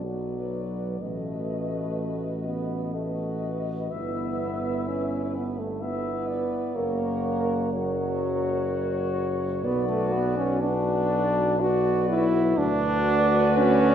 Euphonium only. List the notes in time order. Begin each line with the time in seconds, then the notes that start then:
0.03 F#3
1.01 A3
2.45 B3
2.94 A3
3.92 B3
4.87 C#4
5.35 B3
5.59 A3
5.82 B3
6.76 A#3
7.73 F#3
9.65 B3
9.88 A3
10.12 B3
10.37 C#4
10.61 D4
11.60 F#4
12.09 E4
12.58 D4
13.57 C#4